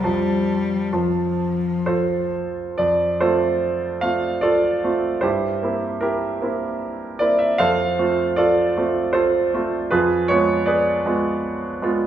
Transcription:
0.04 0.90 F2 soft
0.04 0.94 G3 soft
0.04 0.90 F4 soft
0.04 0.90 C5 soft
0.04 0.90 A5 soft
0.93 2.75 F2 soft
0.93 2.34 F3 soft
0.93 1.85 F4 soft
0.93 1.85 C5 soft
0.93 2.75 A5 soft
1.86 2.75 F4 soft
1.86 2.75 A4 soft
1.86 2.78 C5 soft
2.78 3.20 F2 soft
2.78 3.21 D5 medium
3.20 3.98 A3 soft
3.20 3.98 C4 soft
3.20 3.98 F4 soft
3.20 3.97 A4 soft
3.20 4.01 C5 soft
4.01 4.79 A3 soft
4.01 4.79 C4 soft
4.01 4.41 F4 soft
4.01 4.41 F5 medium
4.41 4.83 F4 soft
4.41 5.20 A4 soft
4.41 5.23 D5 medium
4.84 5.20 A3 soft
4.84 5.20 C4 soft
4.84 5.20 F4 soft
5.21 5.61 G2 soft
5.21 5.62 E4 soft
5.21 5.98 G4 soft
5.21 6.01 C5 soft
5.62 6.37 A#3 soft
5.62 6.38 C4 soft
5.62 6.00 E4 soft
6.01 6.41 E4 soft
6.01 6.77 G4 soft
6.01 6.80 A#4 soft
6.42 7.16 A#3 soft
6.42 7.16 C4 soft
6.42 7.17 E4 soft
7.19 7.55 A#3 soft
7.19 7.56 C4 soft
7.19 7.56 E4 soft
7.19 7.39 D5 medium
7.39 7.59 E5 soft
7.58 7.97 F2 soft
7.58 8.33 A4 soft
7.58 8.33 C5 soft
7.58 8.36 F5 medium
7.99 8.71 A3 soft
7.99 8.71 C4 soft
7.99 8.36 F4 soft
8.36 8.76 F4 soft
8.36 9.10 A4 soft
8.36 9.13 D5 medium
8.77 9.49 A3 soft
8.77 9.49 C4 soft
8.77 9.13 F4 soft
9.13 9.53 F4 soft
9.13 9.87 A4 soft
9.13 9.90 C5 medium
9.54 9.88 A3 soft
9.54 9.88 C4 soft
9.54 9.88 F4 soft
9.91 10.28 F2 soft
9.91 10.26 F4 soft
9.91 10.26 G#4 soft
9.91 10.29 B4 medium
10.28 11.01 G#3 soft
10.28 11.01 B3 soft
10.28 11.01 F4 soft
10.28 10.66 C#5 medium
10.66 11.39 G#4 soft
10.66 11.39 B4 soft
10.66 11.42 D5 medium
11.06 11.77 G#3 soft
11.06 11.77 B3 soft
11.06 11.77 F4 soft
11.82 12.07 G#3 soft
11.82 12.07 B3 soft
11.82 12.07 F4 soft

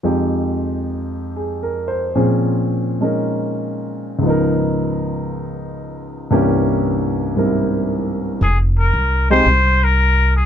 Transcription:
0.03 2.14 F2 soft
0.03 2.14 F3 soft
0.03 2.14 G#3 soft
0.03 2.14 D#4 soft
0.03 2.15 G4 soft
1.36 1.72 G#4 soft
1.63 2.03 A#4 soft
1.88 2.24 C5 soft
2.15 4.24 A#2 soft
2.15 4.21 F3 soft
2.15 4.24 C4 soft
2.15 3.00 C#4 soft
2.15 4.25 G#4 soft
3.01 4.23 G#3 soft
3.01 4.24 C#4 soft
3.01 4.24 D#4 soft
3.01 4.25 A#4 soft
4.19 6.30 C#2 soft
4.19 6.31 G#2 soft
4.23 6.32 F3 soft
4.23 6.34 B3 soft
4.27 6.35 D#4 soft
4.27 6.36 A#4 medium
6.31 8.41 C2 medium
6.31 8.41 G2 soft
6.31 8.41 E3 soft
6.31 8.41 A#3 soft
6.31 8.41 C#4 soft
6.31 8.42 G4 medium
7.36 8.41 G#2 soft
7.36 8.41 G3 soft
7.36 8.42 C4 soft
7.36 8.42 E4 soft
7.36 8.42 A#4 soft
8.41 8.90 F1 medium
8.41 8.58 G#4 medium
8.79 9.27 A#4 medium
8.94 9.42 C2 medium
9.30 9.45 G#3 medium
9.30 9.45 C4 medium
9.30 9.45 D#4 medium
9.30 9.45 G4 medium
9.30 9.85 C5 medium
9.46 10.46 C2 medium
9.84 10.35 A#4 medium
10.36 10.46 G#4 medium

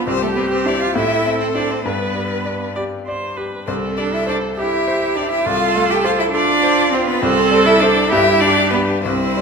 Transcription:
0.06 0.93 C2 medium
0.06 0.13 C4 medium
0.06 0.93 G4 medium
0.06 0.24 C5 medium
0.22 0.28 A3 medium
0.22 0.38 A4 medium
0.34 0.41 B3 medium
0.34 0.84 C4 medium
0.34 0.50 B4 medium
0.51 0.67 C4 medium
0.51 0.69 C5 medium
0.65 0.80 D4 medium
0.65 0.93 E4 medium
0.65 0.93 C5 medium
0.65 0.82 D5 medium
0.80 0.95 F4 medium
0.80 0.95 F5 medium
0.95 1.82 A2 medium
0.95 1.39 E4 medium
0.95 1.83 A4 medium
0.95 1.40 E5 medium
1.26 1.73 C4 soft
1.40 1.47 C4 medium
1.40 1.56 C5 medium
1.55 1.73 D4 medium
1.55 1.82 E4 soft
1.55 1.82 C5 soft
1.55 1.72 D5 medium
1.70 1.85 C4 medium
1.70 1.87 C5 medium
1.85 3.64 G2 medium
1.85 2.75 B3 medium
1.85 2.69 B4 medium
1.85 2.77 B4 medium
2.15 2.64 G3 soft
2.45 2.95 D5 soft
2.75 3.25 G4 soft
2.75 2.83 D5 medium
3.07 3.38 C5 medium
3.07 3.56 D5 soft
3.37 3.68 G4 soft
3.37 3.67 B4 medium
3.67 5.43 C2 medium
3.67 3.95 C4 medium
3.67 4.61 A4 medium
3.67 3.75 C5 medium
3.97 4.46 G3 soft
3.97 4.15 D4 medium
3.97 4.03 D5 medium
4.13 4.28 E4 medium
4.13 4.28 E5 medium
4.27 4.37 D4 medium
4.27 4.75 C5 medium
4.27 4.36 D5 medium
4.57 5.17 E4 medium
4.57 5.05 G4 medium
4.57 5.46 G4 medium
4.57 5.18 E5 medium
4.87 5.35 C5 medium
5.16 5.31 D4 medium
5.16 5.47 G4 soft
5.16 5.30 D5 medium
5.31 5.47 E4 medium
5.31 5.46 E5 medium
5.46 7.19 C2 medium
5.46 5.92 F4 loud
5.46 6.33 A4 medium
5.46 5.90 F5 medium
5.76 6.23 A3 medium
5.90 6.06 G4 loud
5.90 5.96 G5 medium
6.04 6.20 F4 medium
6.04 6.52 C5 medium
6.04 6.11 F5 medium
6.19 6.31 E4 medium
6.19 6.26 E5 medium
6.31 6.93 D4 loud
6.31 7.21 F4 medium
6.31 6.82 A4 medium
6.31 6.96 D5 medium
6.63 7.11 C5 medium
6.91 7.08 C4 loud
6.91 7.23 F4 medium
6.91 7.07 C5 medium
7.06 7.23 B3 loud
7.06 7.24 B4 medium
7.21 8.09 C2 medium
7.21 7.67 C4 loud
7.21 8.13 A4 loud
7.21 7.68 C5 medium
7.51 7.99 G3 medium
7.65 7.83 E4 loud
7.65 7.81 E5 medium
7.80 8.12 D4 loud
7.80 8.09 E4 medium
7.80 8.09 C5 medium
7.80 8.09 D5 medium
8.10 9.02 G2 medium
8.10 8.43 E4 loud
8.10 9.03 G4 medium
8.10 8.41 E5 loud
8.40 8.92 G3 medium
8.40 8.72 D4 loud
8.40 8.72 D5 loud
8.70 8.80 B3 medium
8.70 9.02 D4 medium
8.70 9.02 B4 medium
9.02 9.41 C2 medium
9.02 9.41 C4 medium
9.02 9.41 E4 medium
9.02 9.41 C5 medium
9.37 9.41 G3 medium

